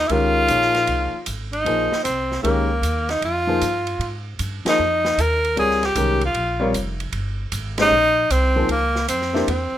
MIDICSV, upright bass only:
0, 0, Header, 1, 3, 480
1, 0, Start_track
1, 0, Tempo, 390371
1, 129, Time_signature, 4, 2, 24, 8
1, 12023, End_track
2, 0, Start_track
2, 0, Title_t, "Upright bass"
2, 0, Program_c, 0, 32
2, 117, Note_on_c, 0, 37, 83
2, 587, Note_off_c, 0, 37, 0
2, 598, Note_on_c, 0, 34, 89
2, 1067, Note_off_c, 0, 34, 0
2, 1078, Note_on_c, 0, 36, 81
2, 1376, Note_off_c, 0, 36, 0
2, 1563, Note_on_c, 0, 32, 89
2, 2029, Note_off_c, 0, 32, 0
2, 2054, Note_on_c, 0, 34, 87
2, 2344, Note_off_c, 0, 34, 0
2, 2524, Note_on_c, 0, 36, 84
2, 2989, Note_off_c, 0, 36, 0
2, 2996, Note_on_c, 0, 37, 79
2, 3458, Note_off_c, 0, 37, 0
2, 3465, Note_on_c, 0, 39, 89
2, 3939, Note_off_c, 0, 39, 0
2, 3953, Note_on_c, 0, 41, 83
2, 4423, Note_off_c, 0, 41, 0
2, 4446, Note_on_c, 0, 43, 88
2, 4899, Note_off_c, 0, 43, 0
2, 4906, Note_on_c, 0, 44, 75
2, 5380, Note_off_c, 0, 44, 0
2, 5404, Note_on_c, 0, 43, 86
2, 5699, Note_off_c, 0, 43, 0
2, 5891, Note_on_c, 0, 41, 84
2, 6353, Note_off_c, 0, 41, 0
2, 6365, Note_on_c, 0, 39, 86
2, 6830, Note_off_c, 0, 39, 0
2, 6852, Note_on_c, 0, 37, 77
2, 7314, Note_off_c, 0, 37, 0
2, 7321, Note_on_c, 0, 36, 93
2, 7789, Note_off_c, 0, 36, 0
2, 7796, Note_on_c, 0, 34, 84
2, 8263, Note_off_c, 0, 34, 0
2, 8271, Note_on_c, 0, 29, 87
2, 8744, Note_off_c, 0, 29, 0
2, 8760, Note_on_c, 0, 31, 81
2, 9229, Note_off_c, 0, 31, 0
2, 9244, Note_on_c, 0, 32, 92
2, 9711, Note_off_c, 0, 32, 0
2, 9717, Note_on_c, 0, 34, 90
2, 10187, Note_off_c, 0, 34, 0
2, 10209, Note_on_c, 0, 36, 94
2, 10674, Note_off_c, 0, 36, 0
2, 10682, Note_on_c, 0, 37, 84
2, 11150, Note_off_c, 0, 37, 0
2, 11169, Note_on_c, 0, 41, 86
2, 11633, Note_off_c, 0, 41, 0
2, 11652, Note_on_c, 0, 40, 85
2, 11944, Note_off_c, 0, 40, 0
2, 12023, End_track
3, 0, Start_track
3, 0, Title_t, "Muted upright bass strokes"
3, 1395, Note_on_c, 9, 29, 38
3, 1518, Note_off_c, 9, 29, 0
3, 2376, Note_on_c, 9, 29, 41
3, 2499, Note_off_c, 9, 29, 0
3, 5728, Note_on_c, 9, 29, 39
3, 5851, Note_off_c, 9, 29, 0
3, 11963, Note_on_c, 9, 29, 40
3, 12023, Note_off_c, 9, 29, 0
3, 12023, End_track
0, 0, End_of_file